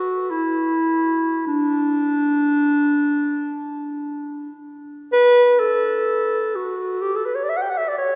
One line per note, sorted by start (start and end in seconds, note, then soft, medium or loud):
0.00 0.32 F#4 medium
0.30 1.46 E4 medium
1.47 4.50 D4 medium
5.13 5.61 B4 loud
5.60 6.57 A4 medium
6.56 7.03 F#4 medium
7.01 7.17 G4 medium
7.16 7.27 A4 medium
7.26 7.37 B4 medium
7.35 7.45 C#5 medium
7.43 7.51 D5 medium
7.49 7.58 E5 medium
7.57 7.63 F#5 medium
7.62 7.71 G5 medium
7.70 7.79 F#5 medium
7.77 7.90 E5 medium
7.88 7.98 D5 medium
7.98 8.15 C#5 loud